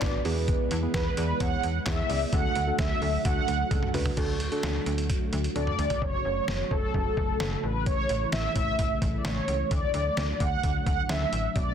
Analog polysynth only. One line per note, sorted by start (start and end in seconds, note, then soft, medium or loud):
0.00 0.21 D5 medium
0.94 1.16 B4 loud
1.17 1.41 B4 loud
1.40 1.83 F#5 loud
1.86 2.34 E5 loud
2.33 2.76 F#5 loud
2.79 3.22 E5 loud
3.25 3.90 F#5 loud
5.56 6.03 D5 medium
6.02 6.73 C#5 loud
6.71 6.93 A4 medium
6.94 7.65 A4 medium
7.63 7.85 B4 medium
7.86 8.29 C#5 loud
8.33 8.54 E5 loud
8.56 8.99 E5 loud
9.18 9.25 D5 medium
9.25 9.72 C#5 medium
9.71 10.42 D5 loud
10.40 10.85 F#5 loud
10.86 11.10 F#5 loud
11.09 11.57 E5 loud
11.56 11.74 D5 loud